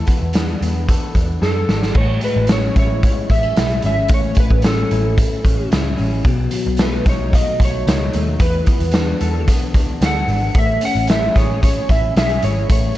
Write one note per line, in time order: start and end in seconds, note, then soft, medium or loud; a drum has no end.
0.00 2.23 E3 medium
0.00 0.89 A4 medium
0.07 0.62 B3 medium
0.07 kick medium
0.07 closed hi-hat medium
0.21 0.54 E2 medium
0.33 1.15 D4 medium
0.33 snare loud
0.33 closed hi-hat medium
0.61 0.94 E2 medium
0.61 2.02 B3 medium
0.61 closed hi-hat medium
0.89 1.41 A4 medium
0.89 kick medium
0.89 closed hi-hat medium
1.15 1.37 E2 medium
1.15 1.67 D4 medium
1.15 kick medium
1.15 closed hi-hat medium
1.42 1.63 F#2 medium
1.42 2.26 A4 medium
1.42 1.98 A4 medium
1.42 snare soft
1.68 1.90 G#1 medium
1.68 2.01 D4 medium
1.68 snare medium
1.83 snare medium
1.95 2.17 A1 medium
1.95 4.09 A2 medium
1.95 2.24 C#5 medium
1.95 kick loud
1.95 crash medium
2.21 3.02 G#3 medium
2.21 2.51 B4 medium
2.21 closed hi-hat medium
2.36 2.68 A1 loud
2.47 3.30 C#4 medium
2.47 snare loud
2.47 closed hi-hat medium
2.52 2.78 C#5 medium
2.76 3.08 A1 medium
2.76 3.55 E4 medium
2.76 3.28 C#5 loud
2.76 kick medium
2.76 closed hi-hat medium
3.03 4.37 G#3 medium
3.03 kick medium
3.03 closed hi-hat medium
3.30 3.51 A1 medium
3.30 3.43 B3 medium
3.30 3.85 E5 medium
3.30 kick medium
3.30 closed hi-hat medium
3.43 3.83 C#4 soft
3.56 3.79 B1 medium
3.56 4.91 E4 medium
3.56 snare loud
3.56 closed hi-hat medium
3.68 closed hi-hat soft
3.82 4.05 G#1 medium
3.82 4.63 C#4 medium
3.82 4.10 E5 medium
3.82 closed hi-hat medium
4.08 4.31 A1 loud
4.08 6.25 A2 medium
4.08 kick loud
4.08 closed hi-hat loud
4.14 4.39 C#5 medium
4.35 kick medium
4.35 closed hi-hat medium
4.40 4.64 B4 medium
4.50 4.83 A1 loud
4.50 kick medium
4.62 5.43 C#4 medium
4.62 5.68 A4 medium
4.62 snare loud
4.62 closed hi-hat medium
4.91 5.24 A1 medium
4.91 5.70 E4 medium
4.91 closed hi-hat medium
5.18 kick medium
5.18 closed hi-hat medium
5.44 5.66 A1 medium
5.44 5.96 C#4 medium
5.44 kick medium
5.44 closed hi-hat medium
5.71 5.94 C#2 medium
5.71 6.30 E4 medium
5.71 snare loud
5.71 closed hi-hat medium
5.97 6.20 A1 medium
5.97 6.30 C#4 medium
5.97 open hi-hat soft
6.25 6.46 B1 loud
6.25 8.40 B2 medium
6.25 kick loud
6.25 closed hi-hat medium
6.51 7.32 F#3 medium
6.51 closed hi-hat medium
6.67 6.98 B1 loud
6.77 7.60 A3 medium
6.77 snare loud
6.77 closed hi-hat medium
6.82 7.08 B4 medium
7.06 7.38 B1 medium
7.06 7.86 D#4 medium
7.06 7.35 C#5 medium
7.06 kick loud
7.06 snare soft
7.06 closed hi-hat medium
7.33 8.40 F#3 medium
7.33 7.62 D#5 loud
7.33 kick medium
7.33 closed hi-hat loud
7.60 7.81 B1 medium
7.60 8.14 A3 medium
7.60 kick medium
7.60 closed hi-hat medium
7.65 8.45 C#5 loud
7.87 8.08 C#2 medium
7.87 8.46 D#4 medium
7.87 snare loud
7.87 closed hi-hat medium
8.13 8.36 D#2 medium
8.13 8.67 A3 medium
8.13 closed hi-hat medium
8.40 8.61 E2 loud
8.40 10.56 E3 medium
8.40 9.44 B4 medium
8.40 kick loud
8.40 closed hi-hat medium
8.66 9.48 B3 medium
8.66 kick medium
8.66 closed hi-hat medium
8.80 9.12 E2 medium
8.80 closed hi-hat medium
8.91 9.74 D4 medium
8.91 snare loud
8.91 closed hi-hat medium
9.21 9.48 E2 medium
9.21 10.02 A4 medium
9.21 closed hi-hat medium
9.48 9.75 B1 medium
9.48 10.61 B3 medium
9.48 kick medium
9.48 closed hi-hat loud
9.74 9.96 C#2 medium
9.74 10.28 D4 medium
9.74 kick medium
9.74 closed hi-hat medium
10.01 10.23 D2 medium
10.01 11.35 A4 medium
10.01 snare loud
10.01 closed hi-hat medium
10.06 10.59 F#5 loud
10.27 10.49 G#1 medium
10.27 10.61 D4 medium
10.27 open hi-hat soft
10.55 10.76 A1 loud
10.55 12.70 A3 medium
10.55 10.84 E5 medium
10.55 kick loud
10.55 closed hi-hat medium
10.81 11.61 C#4 medium
10.81 11.11 F#5 loud
10.81 closed hi-hat medium
10.95 11.27 A1 loud
10.95 closed hi-hat soft
11.07 11.88 E4 medium
11.07 11.37 E5 medium
11.07 snare loud
11.07 closed hi-hat medium
11.35 11.79 A1 medium
11.35 12.16 G#4 medium
11.35 11.63 C#5 medium
11.35 kick medium
11.35 snare soft
11.35 closed hi-hat medium
11.62 12.95 C#4 medium
11.62 11.91 C#5 medium
11.62 kick medium
11.62 closed hi-hat loud
11.89 12.11 A1 medium
11.89 12.41 E4 medium
11.89 12.15 E5 medium
11.89 kick medium
11.89 closed hi-hat medium
12.16 12.37 B1 medium
12.16 12.97 G#4 medium
12.16 12.44 E5 loud
12.16 snare loud
12.16 closed hi-hat medium
12.29 closed hi-hat soft
12.42 12.64 G#1 medium
12.42 12.97 E4 medium
12.42 12.71 C#5 medium
12.42 closed hi-hat medium
12.70 12.91 A1 loud
12.70 12.97 A3 medium
12.70 12.97 C#5 medium
12.70 kick loud
12.70 closed hi-hat loud